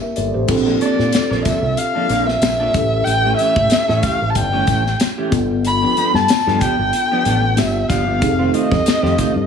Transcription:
Already playing: A#3 D4 E4
0.01 A#4 E5, muted clean electric guitar stroke
0.16 G1 A4 D5, closed hi-hat, tambourine
0.34 A1 G4 C5, muted clean electric guitar stroke
0.47 A#1 C4 D4 F4 A4, muted clean electric guitar stroke, kick, crash, tambourine
0.66 F3 A#3 D4 A4
0.81 F3 A#3 D4 A4 D5, closed hi-hat
0.99 A#2, muted clean electric guitar stroke, snare
1.12 muted clean electric guitar stroke, snare, closed hi-hat, tambourine
1.30 A#1 F3 A#3 D4 A#4, snare
1.45 F3 A#3 D4 A4 E5, kick, closed hi-hat, tambourine
1.62 C2, muted clean electric guitar stroke
1.77 F5, muted clean electric guitar stroke, closed hi-hat, tambourine
1.95 F3 A#3 D4 A4
2.09 A#1 F3 A#3 D4 A#4, closed hi-hat, tambourine
2.26 E5, muted clean electric guitar stroke, snare
2.42 A#1, muted clean electric guitar stroke, snare, closed hi-hat, tambourine
2.60 F3 A#3 D4 A4
2.74 A1 C#4 E4 G4 A4, muted clean electric guitar stroke, kick, closed hi-hat, tambourine
2.93 muted clean electric guitar stroke
3.04 A1 G5, muted clean electric guitar stroke, closed hi-hat, tambourine
3.24 E3 A3 C#4 G4
3.37 E3 A3 C#4 G4 E5, closed hi-hat, tambourine
3.56 A2, muted clean electric guitar stroke, kick
3.70 muted fingered electric bass stroke, muted clean electric guitar stroke, snare, closed hi-hat, tambourine
3.88 A2 E3 A3 C#4 A4, snare
4.03 E3 A3 C#4 G4 F5, kick, closed hi-hat, tambourine
4.21 A1, muted clean electric guitar stroke
4.30 A5
4.35 G1 G5, muted clean electric guitar stroke, kick, closed hi-hat, tambourine
4.53 E3 A3 C#4 G4
4.67 A1 E3 A3 C#4 A4, kick, closed hi-hat, tambourine
4.86 muted clean electric guitar stroke, snare
5.00 muted clean electric guitar stroke, snare, closed hi-hat, tambourine
5.18 E3 A3 C#4 G4
5.31 G1 B3 D4 F4 A4, muted clean electric guitar stroke, kick, closed hi-hat, tambourine
5.51 muted clean electric guitar stroke
5.65 B5, muted clean electric guitar stroke, closed hi-hat, tambourine
5.82 F3 B3 D4 G4
5.97 F3 B3 D4 G4, closed hi-hat
6.14 G2 A5, muted clean electric guitar stroke, snare
6.28 muted clean electric guitar stroke, snare, closed hi-hat, tambourine
6.47 G2 F3 B3 D4 A4, snare
6.61 F3 B3 D4 G4 G5, kick, closed hi-hat, tambourine
6.79 G1, muted clean electric guitar stroke
6.93 muted clean electric guitar stroke, closed hi-hat, tambourine
7.11 F3 B3 D4 G4
7.25 A1 F3 B3 D4 A4, closed hi-hat, tambourine
7.43 muted clean electric guitar stroke
7.56 G1 B3 D4 F4 G4 E5, muted clean electric guitar stroke, snare, closed hi-hat, tambourine
7.75 muted clean electric guitar stroke
7.89 G1 F3 B3 D4 G4 F5, kick, snare, closed hi-hat, tambourine
8.07 F3 B3 D4 G4
8.19 F1 C4 D#4 G4 G#4, muted clean electric guitar stroke, kick, closed hi-hat, tambourine
8.28 A4
8.39 D#3 A3 C4 F4
8.53 D#3 A3 C4 F4 D#5, closed hi-hat
8.72 F2, kick, snare
8.86 muted clean electric guitar stroke, muted fingered electric bass stroke, snare, closed hi-hat, tambourine
9.03 F2 D#3 A3 C4 G4, snare
9.18 D#3 A3 C4 F4, kick, closed hi-hat, tambourine
9.35 G2, muted clean electric guitar stroke

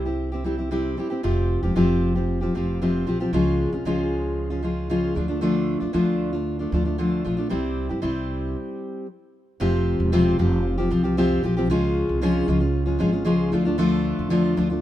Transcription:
Already playing: C2
0.05 C4 E4 G4
0.32 C4 E4 G4
0.44 G3 C4 E4 G4
0.58 C4 E4 G4
0.71 C3 G3 C4 E4 G4
0.97 G3 C4 E4 G4
1.10 C4 E4 G4
1.23 F1 F2 C3 F3 C4 F4 G4
1.63 E1 F3 C4 F4 G4
1.75 F1 F2 C3 F3 C4 F4 G4
2.15 F3 C4 F4 G4
2.41 F3 C4 F4 G4
2.55 F1 F3 C4 F4 G4
2.82 F2 C3 F3 C4 F4 G4
3.07 A#1 F3 C4 F4 G4
3.20 F3 C4 F4 G4
3.33 C#2 C#3 F3 G#3 C#4 F4
3.72 C2 G#3 C#4 F4
3.85 C#2 C#3 F3 G#3 C#4 F4
4.50 G#3 C#4 F4
4.63 F3 G#3 C#4 F4
4.90 C#3 F3 G#3 C#4 F4
5.15 D2 F3 A3 D4 F4
5.28 A3 D4 F4
5.41 D3 F3 A3 D4 F4
5.80 E2 A3 D4 F4
5.93 D2 D3 F3 A3 D4 F4
6.33 A3 D4 F4
6.59 A3 D4 F4
6.72 D2 F3 A3 D4 F4
6.85 A3 D4 F4
6.98 D3 F3 A3 D4 F4
7.25 A#1 F3 A3 D4 F4
7.37 A3 D4 F4
7.50 C2 C3 G3 C4 E4 G4
7.89 G2 C4 E4 G4
8.02 C2 C3 G3 C4 E4 G4
9.60 F1 F2 C3 F3 C4 F4 G4
10.00 E1
10.12 F2 C3 F3 C4 F4 G4
10.38 F1 F3 C4 F4 G4
10.78 F3 C4 F4 G4
10.90 C2 F3 C4 F4 G4
11.03 F3 C4 F4 G4
11.17 F2 C3 F3 C4 F4 G4
11.43 A#1 F3 C4 F4 G4
11.57 F3 C4 F4 G4
11.70 C#2 C#3 F3 G#3 C#4 F4
12.09 C2
12.22 C#3 F3 G#3 C#4 F4
12.48 C#2 F3 G#3 C#4 F4
12.60 G#3 C#4 F4
12.86 G#3 C#4 F4
12.99 G#1 F3 G#3 C#4 F4
13.12 G#3 C#4 F4
13.25 C#2 C#3 F3 G#3 C#4 F4
13.52 D2 F3 A3 D4 F4
13.65 A3 D4 F4
13.78 D3 F3 A3 D4 F4
14.19 E2
14.30 D3 F3 A3 D4 F4
14.56 D2 F3 A3 D4 F4
14.70 A3 D4 F4

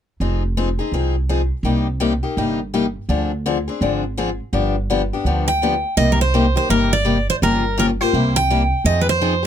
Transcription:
0.20 F1 F3 C4 D#4 G#4
0.57 F3 C4 D#4 G#4
0.79 C4 D#4 G#4
0.92 C2 F3 C4 D#4 G#4
1.29 F3 C4 D#4 G#4
1.63 C2 C3 G3 A#3 D#4 G4
2.00 C3 G3 A#3 D#4 G4
2.23 A#3 D#4 G4
2.37 G1 C3 G3 A#3 D#4 G4
2.74 C3 G3 A#3 D#4 G4
3.09 D2 D3 F3 C4 D4 G#4
3.46 D3 F3 C4 D4 G#4
3.68 C4 D4 G#4
3.81 G#1 D3 F3 C4 D4 G#4
4.17 D3 F3 C4 D4 G#4
4.53 G1 D3 F3 B3 D4 G4
4.90 D3 F3 B3 D4 G4
5.13 B3 D4 G4
5.25 D2 D3 F3 B3 D4 G4
5.48 G5
5.62 D3 F3 B3 D4 G4
5.97 C2 C3 G3 A#3 D#4 G4 D#5
6.12 A#4
6.21 C5
6.34 C3 G3 A#3 D#4 G4
6.56 A#3 D#4 G4 C5
6.69 G1 C3 G3 A#3 D#4 G4 A#4
6.93 D5
7.05 C3 G3 A#3 D#4 G4
7.30 C5
7.42 G1 C#3 F3 A#3 F4 G4 A#4
7.77 C#3 F3 A#3 F4 G4 A#4
8.01 A#3 F4 G4 C5
8.13 C2 C3 G3 A#3 E4 G4
8.36 G5
8.50 C3 G3 A#3 E4 G4
8.84 F2 F3 C4 D#4 G#4 D#5
9.01 B4
9.09 C5
9.21 F3 C4 D#4 G#4
9.43 G#4

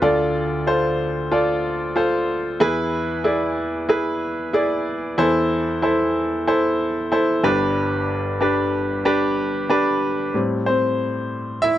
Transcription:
0.02 D2 D3 F4 A4 D5
0.67 F4 A4 C5
1.32 F4 A4 D5
1.96 F4 A4 C5
2.60 E2 E3 E4 G#4 B4
3.24 E4 G#4 D5
3.89 E4 G#4 B4
4.53 E4 G#4 D5
5.18 E2 E3 E4 A4 C5
5.82 E4 A4 C5
6.47 E4 A4 C5
7.12 E4 A4 C5
7.43 G1 G2 D4 G4 B4
8.41 D4 G4 B4
9.05 D4 G4 B4
9.69 D4 G4 B4
10.34 A2 G3 C4
10.66 C4 C5
11.62 E4 E5

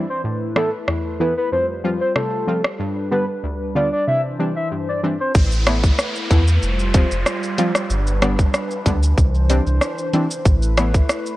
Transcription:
Already playing: E3 D4 C5
0.10 C5
0.24 A2 A3 E4 B4
0.56 E3 A3 B3 E4 A4, cross-stick
0.88 E2, cross-stick
1.20 E3 A3 B3 E4 B4
1.37 B4
1.52 F2 G3 F4 C5
1.84 F3 G3 C4 F4
2.01 C5
2.16 C3 A4, cross-stick
2.47 F3 G3 C4 F4
2.65 cross-stick
2.79 G2 D4 B4
3.11 D3 G3 B3 D4 B4
3.43 D2
3.75 D3 G3 B3 F4 D5
3.92 D5
4.07 C3 E3 C5 E5
4.39 E3 G3 C4 D4
4.56 E5
4.71 G2
4.88 D5
5.03 E3 G3 C4 D4
5.20 C5
5.35 A1 A3 E4 B4, kick, downlifter, shaker
5.52 shaker
5.67 E3 A3 B3 E4, cross-stick, closed hi-hat, shaker
5.84 kick, shaker
5.99 cross-stick, shaker
6.16 shaker
6.30 E2 E3 A3 B3 E4, kick, closed hi-hat, shaker
6.48 shaker
6.63 F1 G3 F4 C5, shaker
6.79 shaker
6.94 F3 G3 C4 F4, kick, closed hi-hat, shaker
7.12 F1, shaker
7.26 cross-stick, shaker
7.43 shaker
7.58 F3 G3 C4 F4, closed hi-hat, shaker
7.75 cross-stick, shaker
7.90 G1 D4 B4, shaker
8.07 shaker
8.22 D3 G3 B3 D4, cross-stick, closed hi-hat, shaker
8.39 kick, shaker
8.54 cross-stick, shaker
8.71 shaker
8.86 D2 D3 G3 B3 D4, kick, closed hi-hat, shaker
9.03 shaker
9.18 C2 E3 D4 C5, kick, shaker
9.35 shaker
9.50 E3 G3 C4 D4, closed hi-hat, shaker
9.67 C2, shaker
9.81 cross-stick, shaker
9.98 shaker
10.13 E3 G3 C4 D4, closed hi-hat, shaker
10.31 shaker
10.45 A1 A3 E4 B4, kick, shaker
10.62 shaker
10.77 E3 A3 B3 E4, cross-stick, closed hi-hat, shaker
10.94 kick, shaker
11.09 cross-stick, shaker
11.26 shaker

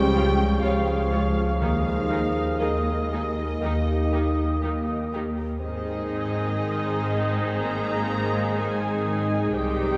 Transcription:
Already playing: C#2 C#3 F3 G3 G#3 C#4 F4 G#4 F5 G5 G#5 C#6
0.14 G#3 F4 C#5
0.39 F4
0.62 C#2 F3 G#3 F4 G#4 C#5 F5
0.66 C#6
0.87 G#4
1.11 G#3 F4 C#5 F5
1.36 C#6
1.59 D#2 D#3 F3 A#3 D#4 G#4 A#4 F5
1.65 D#6
1.85 D#4
2.10 D#3 G#3 D#4 G#4 A#4
2.34 G#4
2.59 D#2 D#3 A#3 D#4 G#4 A#4 D#5 D#6
2.84 G#4
3.10 D#3 D#4 G#4 A#4 G#5
3.36 A#5
3.60 D#2 D#3 A#3 D#4 G4 A#4 D#6
3.64 D#3
3.86 D#4
4.11 D#3 A#3 D#4 G4 A#4
4.36 G4
4.61 D#2 D#3 D#4 G4 A#4
4.86 G4
5.11 D#3 D#4 G4 A#4 G5
5.37 A#5
5.60 G#1 G#2 D#3 C4 D#4 G#4 C5 D#5 D#6
5.86 D#3
6.10 C4
6.60 G#4
6.86 C5
7.11 D#5
7.37 G#5
7.60 A#3 D#5 A#5
7.87 C5
8.11 G#4
8.35 C4
8.57 D#3 G#3 C4 G#4 G#5 D#6
8.83 C4
9.07 D#3
9.31 C4
9.53 C2 C3 D#3 G3 C4 D#4 G4 C5 G5 D#6
9.79 G3

